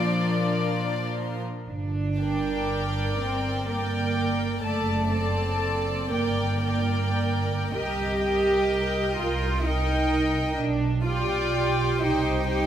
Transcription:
Already playing: A#2 F3 D4 F4 A#4 D5
1.67 G1 D4
2.19 A#4 D5 G5
3.18 G1 C4
3.68 A#3 A#4 D5 G5
4.62 F#1 A3 A4 D5 A5
5.10 C4 A4 D5 A5
6.10 G1 A#3 A#4 D5 G5
6.64 A#4 D5 G5
7.73 C2 G4 A#4 D#5 G5
8.23 A#4 D#5 G5
9.18 C2 F4
9.64 D#4 A#4 D#5 G5
10.59 B1 D4
11.06 F4 G4 D5 G5
12.00 C2 D#4 G4 C5 G5
12.48 G4 C5 G5

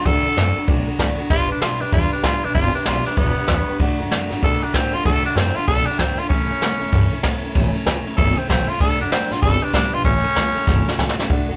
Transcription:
0.05 D2 D3 A3 D4 F#4 A4, kick, ride
0.25 D4 F#4 A4, muted upright bass stroke, ride
0.37 F#2 A3 D4 F#4, snare, ride
0.56 D4 F#4 A4, muted upright bass stroke, ride
0.67 B1 D3 A3 D4 F#4 A4, kick, ride
0.88 D4 F#4 A4, muted upright bass stroke, ride
0.99 D2 A3 D4 F#4 A4, kick, snare, ride
1.18 D4 F#4 A4, muted upright bass stroke, ride
1.30 G1 G3 D4 F4 G4 B4, kick, ride
1.48 B1 D4 G4 B4, ride
1.60 B1 G3 D4 F4 G4, snare, ride
1.65 B4
1.80 D2 D4 G4 B4, ride
1.92 E2 G3 D4 F4 G4 B4, kick, ride
2.12 D4 G4 B4, muted upright bass stroke, ride
2.16 D4
2.23 D2 G3 D4 F4 G4 B4, kick, snare, ride
2.43 B1 D4 G4 B4, ride
2.47 D4
2.54 G1 G3 D4 F4 G4 B4, kick, ride
2.74 D4 G4 B4, muted upright bass stroke, ride
2.86 B1 G3 D4 F4 G4, snare, ride
2.90 B4
3.05 D4 G4 B4, muted upright bass stroke, snare, ride
3.16 E1 G3 B3 D4 G4 B4, kick, ride
3.37 D4 G4 B4, muted upright bass stroke, ride
3.48 E2 G3 D4 G4 B4, kick, snare, ride
3.68 G4 B4, muted upright bass stroke, ride
3.72 D4
3.79 D2 D3 A3 D4 F#4 A4, kick, ride
3.99 F#2 D4 F#4 A4, ride
4.09 F#2 A3 D4 F#4 A4, snare, ride
4.30 A2 D4 F#4 A4, snare, ride
4.42 B2 D3 A3 D4 F#4 A4, kick, ride
4.62 D4 F#4 A4, muted upright bass stroke, ride
4.73 A2 A3 C4 D4 F#4 A4, kick, snare, ride
4.93 F#2 D4 F4 F#4 A4, ride
5.04 D2 D3 A3 D4 F#4 A4, kick, ride
5.23 D4 F#4 A4, muted upright bass stroke, ride
5.35 F#2 A3 C4 D4, snare, ride
5.56 D4 F4 F#4 A4, muted upright bass stroke, ride
5.67 B1 D3 A3 D4 F#4 A4, kick, ride
5.86 D4 F#4 A4, muted upright bass stroke, ride
5.90 D4
5.99 D2 A3 C4 D4 F#4 A4, kick, snare, ride
6.18 F4 F#4 A4, muted upright bass stroke, ride
6.22 D4
6.29 A1 A2 E3 A3 C#4 E4, kick, ride
6.33 A4
6.49 C#2 A3 C#4 E4 A4, ride
6.60 C#2 A3 C#4 E4 A4, snare, ride
6.79 E2 A3 C#4 E4 A4, ride
6.92 G2 A2 E3 A3 C#4 E4 A4, kick, ride
7.11 C#4 E4 A4, muted upright bass stroke, ride
7.16 A3
7.23 E2 A3 C#4 E4 A4, kick, snare, ride
7.42 C#2 A3 C#4 E4 A4, ride
7.54 A1 A2 E3 A3 C#4 E4 A4, kick, ride
7.73 A3 C#4 E4 A4, muted upright bass stroke, ride
7.85 C#2 A3 C#4 E4 A4, snare, ride
8.04 A3 C#4 E4 A4, muted upright bass stroke, ride
8.17 G1 A2 E3 A3 C#4 E4 A4, kick, ride
8.35 A3 C4 C#4 E4 A4, ride
8.47 A1 A3 C4 C#4 E4 A4, kick, snare, ride
8.67 A3 C#4 E4 F4 A4, muted upright bass stroke, ride
8.79 D2 D3 A3 D4 F#4 A4, kick, ride
8.99 F#2 D4 F#4 A4, ride
9.12 F#2 A3 C4 D4 F#4 A4, snare, ride
9.30 A2 D4 F4 F#4 A4, snare, ride
9.42 G1 G3 D4 G4 A4 B4, kick, ride
9.62 D4 G4 B4, ride
9.74 D2 G3 D4 G4 B4, kick, snare, ride
9.92 B1 D4 F4 G4 B4, ride
10.05 A1 A2 E3 A3 C#4 E4 A4, kick, ride
10.24 A3 C#4 E4 A4, muted upright bass stroke, ride
10.34 C#2 A3 C#4 E4 A4, snare, ride
10.55 A3 C#4 E4 A4, muted upright bass stroke, ride
10.65 G1 A2 E3 A3 C#4 E4 A4, kick, snare
10.86 A3 C#4 E4 A4, muted upright bass stroke, snare
10.98 C#2 A3 C#4 E4 A4, kick, snare
11.09 snare
11.17 A3 C#4 E4 A4, muted upright bass stroke, snare
11.29 D2 D3 A3 D4 F#4 A4, kick, ride
11.49 F#2 D4 F#4 A4, ride

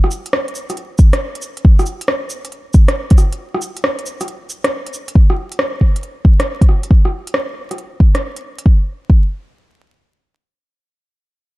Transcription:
0.04 cross-stick
0.11 cabasa
0.26 closed hi-hat
0.33 cross-stick
0.48 closed hi-hat
0.55 cabasa
0.70 cross-stick, closed hi-hat, cabasa
0.77 closed hi-hat
0.99 kick, cabasa
1.13 cross-stick, closed hi-hat
1.35 closed hi-hat
1.42 cabasa
1.57 closed hi-hat
1.65 kick
1.79 cross-stick, cabasa
1.86 cabasa
2.01 closed hi-hat
2.08 cross-stick
2.30 cabasa
2.45 closed hi-hat
2.52 closed hi-hat
2.74 kick, cabasa
2.88 cross-stick, closed hi-hat
3.10 kick, closed hi-hat
3.18 cross-stick, cabasa
3.32 closed hi-hat
3.54 cross-stick
3.62 cabasa
3.77 closed hi-hat
3.84 cross-stick
3.99 closed hi-hat
4.06 cabasa
4.21 cross-stick, closed hi-hat, cabasa
4.28 closed hi-hat
4.50 cabasa
4.64 cross-stick, closed hi-hat
4.87 closed hi-hat
4.94 cabasa
5.08 closed hi-hat
5.15 kick
5.30 cross-stick
5.52 closed hi-hat
5.59 cross-stick
5.81 kick
5.96 closed hi-hat
6.03 closed hi-hat
6.25 kick
6.40 cross-stick, closed hi-hat
6.61 kick, closed hi-hat
6.69 cross-stick
6.83 closed hi-hat
6.91 kick
7.05 cross-stick
7.27 closed hi-hat
7.34 cross-stick
7.71 cross-stick, closed hi-hat
7.78 closed hi-hat
8.00 kick
8.15 cross-stick, closed hi-hat
8.36 closed hi-hat
8.58 closed hi-hat
8.66 kick
9.10 kick

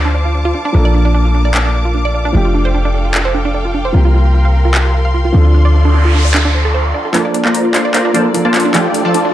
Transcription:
Already playing: D2 F3 C4 D4 A4 C5 F5 A5 D6
0.05 D4
0.15 D4
0.25 F4
0.34 D4
0.45 F4
0.54 D4
0.65 D4
0.72 A#1 F3 A#3 D4 F5
0.76 A4
0.85 D5
0.94 D4
1.05 D4
1.14 D4
1.25 F4
1.34 D4
1.45 D5
1.54 D4, clap
1.65 D4
1.74 D4
1.85 F4
1.94 D4
2.05 D5
2.14 D4
2.25 D4
2.32 F1 F3 A3 D4 A4 G5
2.36 G4
2.45 F4
2.54 D4
2.65 C5
2.74 D4
2.85 D4
2.94 D4
3.05 F4
3.14 D4, clap
3.25 C5
3.34 D4
3.45 D4
3.54 D4
3.65 F4
3.74 D4
3.85 C5
3.92 C2 F3 A#3 C4 F4 G4 A#4 C6
4.05 F4
4.14 F4
4.25 G4
4.34 F4
4.45 F5
4.54 F4
4.65 F4
4.74 F4, clap
4.85 G4
4.94 F4
5.05 F5
5.14 F4
5.25 F4
5.32 D2 F3 C4 D4 A4 D5
5.45 F4
5.54 D4, noise sweep
5.65 D5
5.74 D4
5.85 D4
5.94 D4
6.05 F4
6.14 D4
6.25 D5
6.34 D4, clap
6.45 D4
6.54 C5
6.65 A4
6.74 C5
6.85 F5
6.94 D5
7.05 A4
7.12 F3 A#3 D4 F4 A4 C5 D5 A5, clap, closed hi-hat, riser
7.25 D5
7.34 D4, closed hi-hat
7.45 A#3 D4 F4 C5 D5 A#5, clap
7.54 D4, closed hi-hat
7.65 F4
7.74 A#3 D4 F4 C5 D5 C6, clap, closed hi-hat
7.85 D5
7.94 A#3 D4 F4 C5 D5 A#5, clap, closed hi-hat
8.05 D4
8.13 F3 A#3 D4 F4 A4 C5 D5 A5, closed hi-hat
8.25 F4
8.33 F3 A#3 D4 A4, closed hi-hat
8.45 A#3 F4 C5 D5 A5
8.54 D4, clap, closed hi-hat
8.60 closed hi-hat
8.65 D4
8.72 F3 A3 D4 F4 G4 A4 D5 G5, clap, closed hi-hat
8.76 G4
8.85 F4
8.94 D4, closed hi-hat
9.05 F3 F4 A4 C5 D5 A5
9.14 D4, closed hi-hat
9.25 D4

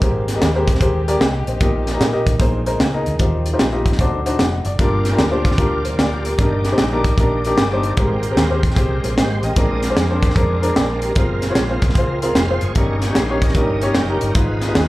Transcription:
Already playing: A#3
0.02 G#1 G#2 G#3 C4 G4 G#4 A#4 C5, kick, closed hi-hat
0.28 snare, closed hi-hat
0.35 G4 G#4 A#4 D#5
0.42 D#2, snare, closed hi-hat
0.55 G4 G#4 A#4 C5
0.68 kick, closed hi-hat
0.75 snare
0.81 D#2 G4 G#4 A#4 C5, kick, closed hi-hat
1.08 G4 G#4 A#4 D5, closed hi-hat
1.20 C2 G5, snare, closed hi-hat
1.47 A#1 C5 D#5, closed hi-hat
1.61 A#1 A#2 G3 A#3 D#4 G4 A#4 D#5, kick, closed hi-hat
1.87 snare, closed hi-hat
1.94 D#4 G4 A#4 D#5
2.00 A#2, snare, closed hi-hat
2.13 D#4 G4 A#4 D#5
2.27 kick, closed hi-hat
2.40 A#1 A#2 G#3 A#3 C4 D#4 G#4 A#4 C5, kick, closed hi-hat
2.66 D#4 G#4 A#4 C5, closed hi-hat
2.80 C#2, snare, closed hi-hat
2.93 D#4 G#4 A#4 D#5
3.06 D2, closed hi-hat
3.19 D#2 D#3 F3 G3 D#4 F4 G4 C5, kick, closed hi-hat
3.46 closed hi-hat
3.53 D#4 F4 G4 C5
3.59 A#1, snare, closed hi-hat
3.73 D#4 F4 G4 D#5
3.86 kick, closed hi-hat
3.92 snare
3.99 D2 D3 F#3 D4 D#4 F#4 C5, kick, closed hi-hat
4.26 D4 D#4 F#4 C5, closed hi-hat
4.39 F1 F#5, snare, closed hi-hat
4.65 F#1 D5, closed hi-hat
4.78 G1 G2 F3 G3 A#3 D4 F4 G4 A#4 D5, kick, closed hi-hat
5.05 snare, closed hi-hat
5.12 D4 F4 G4 A#4
5.18 D2, snare, closed hi-hat
5.32 D4 F4 G4 C5
5.45 kick, closed hi-hat
5.52 snare
5.58 D2 D4 F4 G4 A#4, kick, closed hi-hat
5.85 C5, closed hi-hat
5.98 D2 A#4 D5, snare, closed hi-hat
6.25 G4 A#4, closed hi-hat
6.38 G1 G2 D#3 A#3 D4 D#4 G4 A#4 D5, kick, closed hi-hat
6.64 snare, closed hi-hat
6.72 D4 D#4 G4 C5
6.78 A#1, snare, closed hi-hat
6.93 D4 D#4 G4 A#4
7.04 kick, closed hi-hat
7.18 A#1 D4 D#4 G4 A#4, kick, closed hi-hat
7.45 D4 D#4 G4 A#4, closed hi-hat
7.58 G1, snare, closed hi-hat
7.73 D4 D#4 G4 C5
7.83 closed hi-hat
7.97 G#1 G#2 G#3 A#3 C4 G4 G#4 A#4, kick, closed hi-hat
8.23 closed hi-hat
8.31 C4 G4 G#4 A#4
8.36 D#2, snare, closed hi-hat
8.50 C4 G4 G#4 C5
8.63 kick, closed hi-hat
8.71 snare
8.76 C2 C4 G4 G#4 C5, kick, closed hi-hat
9.04 A#1 G#4 C5, closed hi-hat
9.17 G#1 G4 C5 D#5, snare, closed hi-hat
9.43 A1 A#4 D#5 G5, closed hi-hat
9.56 A#1 A#2 G#3 C4 D4 G#4 A#4, kick, closed hi-hat
9.83 snare, closed hi-hat
9.90 C4 D4 G#4 C5
9.97 F2, snare, closed hi-hat
10.10 C4 D4 G#4 C5
10.23 kick, closed hi-hat
10.30 snare
10.36 F2 C4 D4 G#4 A#4, kick, closed hi-hat
10.62 C4 D4 G#4 A#4, closed hi-hat
10.76 A#1 D5, snare, closed hi-hat
11.02 G4 A#4, closed hi-hat
11.15 F#1 G#3 A#3 C4 F4 G#4 A#4, kick, closed hi-hat
11.42 snare, closed hi-hat
11.50 C4 F4 G#4 C#5
11.55 A#1, snare, closed hi-hat
11.70 C4 F4 G#4 C5
11.82 C2, kick, closed hi-hat
11.89 snare
11.95 C#2 C4 F4 G#4 C5, kick, closed hi-hat
12.22 C4 F4 G#4 A#4, closed hi-hat
12.35 F1 C5 F5, snare, closed hi-hat
12.50 C4 F4 G#4 C5
12.61 F#1 G#4 C#5, closed hi-hat
12.75 G1 G2 G3 C#4 D#4 G4 A#4, kick, closed hi-hat
13.02 G4 C#5, snare, closed hi-hat
13.10 C#4 D#4 G4 C#5
13.15 A#1 C5 F5, snare, closed hi-hat
13.30 C#4 D#4 G4 C#5
13.42 A#4 D#5, kick, closed hi-hat
13.49 snare
13.54 G1 G2 G3 C#4 D#4 G4 A#4, kick, closed hi-hat
13.81 C#4 D#4 G4 C#5, closed hi-hat
13.88 F5
13.95 F#1 G5, snare, closed hi-hat
14.09 C#4 D#4 G4 A#4
14.21 G1, closed hi-hat
14.35 G#1 G#2 F3 G#3 B3 D#4 F4 G#4 A#4 B4, kick, closed hi-hat
14.39 B4
14.61 snare, closed hi-hat
14.68 D#4 F4 G#4 B4
14.75 D#2, snare, closed hi-hat

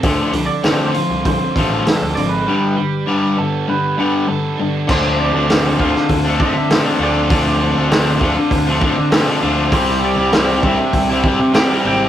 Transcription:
Already playing: A4
0.03 D2 D3 F3 A3, kick, open hi-hat
0.32 C2 D3 F3, open hi-hat
0.46 D5
0.63 D3 F3 A3 C4, snare, open hi-hat
0.87 C5
0.93 D3 F3 F4, open hi-hat
1.10 C2
1.24 D3 F3 C5, kick, open hi-hat
1.55 A1 D3 F3 A3 F4, kick, open hi-hat
1.85 D3 F3 A4, snare, open hi-hat
2.02 D2
2.15 G#1 D3 C4 D5, open hi-hat
2.19 F3
2.29 B4
2.46 G2 D3 G3
2.76 G2 D3 G3
3.06 G2 D3 G3 D4
3.37 G2 D3 B3 A4
3.67 G2 D3 G3 B4
3.97 G2 D3 G3 B3
4.28 G2 D3 A4
4.57 G2 D3 D4
4.87 D2 D3 F3 A3 D4 C5, kick, crash
5.17 C4 D5
5.33 D2 A3 D4
5.38 F3
5.48 D3 F3 A3 C4 D4, snare, open hi-hat
5.78 D2 D3 F3 F4 F5, kick
5.82 A3 D4
5.95 muted overdriven electric guitar stroke, snare
6.08 D2 D3, kick, open hi-hat
6.25 F3 A3 D4
6.39 D3 F3 A3 C4 D4 E5, kick
6.54 D3, muted overdriven electric guitar stroke
6.69 D3 F3 A3 D4, snare, open hi-hat
6.85 F3 A3 D4 D5
6.98 D2 D3 F3 A3 D4 F4
7.03 D5
7.29 D2 D3 F3 A3 D4, kick, open hi-hat
7.60 C4
7.75 D2 F3 A3 D4
7.89 D3 F3 A3 C4 D4, snare, open hi-hat
8.20 D2 D3 F3 A3 D4 F4, kick
8.37 muted overdriven electric guitar stroke
8.50 D2 D3, kick, open hi-hat
8.67 F3 A3 D4
8.80 D3 F3 A3 C4 D4, kick
8.98 D3, muted overdriven electric guitar stroke
9.11 D3 F3 A3 D4, snare, open hi-hat
9.26 F3 A3 D4
9.41 D2 D3 F3 A3 D4 F4
9.71 C2 C3 G3 C4 C5, kick, open hi-hat
9.75 E4
10.01 G3 D5
10.16 C2 G3 C4 E4
10.32 C3 G3 C4 E4, snare, open hi-hat
10.61 C2 C3 G3 C4 D4 E5, kick
10.66 E4
10.79 muted overdriven electric guitar stroke
10.91 C2 G3, kick, open hi-hat
11.09 G3 C4 E4
11.21 C3 C4, kick
11.26 G3 C4 E4
11.40 C3, muted overdriven electric guitar stroke
11.52 C3 G3 C4 G5, snare, open hi-hat
11.57 E4
11.69 G3 C4 E4
11.82 G#1 C3 G3 C4 D4 E4
11.87 G5

